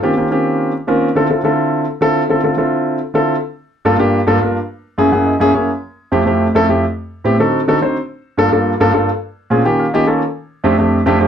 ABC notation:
X:1
M:4/4
L:1/8
Q:1/4=212
K:Gdor
V:1 name="Grand piano"
[_E,B,C_DFG] [E,B,CDFG] [E,B,CDFG]3 z [E,B,CDFB] z | [D,CEFA] [D,CEFA] [D,CEFA]3 z [D,CEFA] z | [D,CEFA] [D,CEFA] [D,CEFA]3 z [D,CEFA] z | z3 [G,,B,DFA] [G,,B,DFG] z [G,,B,DFA] [G,,B,DFB] |
z3 [^F,,^A,^CE^G^g] [F,,A,CEG^f] _e [F,,A,C=EG^c] [F,,A,CEGc] | z3 [F,,A,CEG] [F,,A,CEG] z [F,,A,CEA] [F,,A,CEG] | z3 [A,,=B,CEG] [D,C_E^FA] z [D,CEFA] [D,CEFc] | z3 [G,,B,DFA] [G,,B,DFA] z [G,,B,DFA] [G,,B,DFA] |
z3 [B,,C_DF_A_a] [_E,B,DFGg] f [E,B,DFG_e] [E,B,DF=A_d] | z3 [F,,A,CDG] [F,,A,CDG] z [F,,A,CDG] [F,,A,CDG] |]